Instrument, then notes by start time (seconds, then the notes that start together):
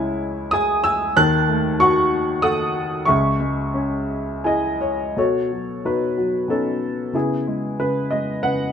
upright piano
Already playing: C#2 C#3 G#3 E4 C#5 G#5
0.51 G#4 G#5 D#6
0.84 G#5 E6
1.17 D#2 D#3 A5 F#6
1.49 A3
1.80 F#4 F#5 C#6
2.42 A4 F#5 D#6
3.05 C#2 C#3 E5 C#6
3.40 G#3
3.74 C#4
4.44 E4 G#4 D#5 G#5
4.81 C#5
5.17 B2 F#4 A4 C#5
5.52 F#3
5.85 B2 D#4 F#4 B4
6.17 F#3
6.48 B2 C#4 D#4 A4
7.13 C#3 B3 E4 G#4
7.47 G#3
7.79 C#3 B4
8.11 G#3 D#5
8.43 C#3 B4 F#5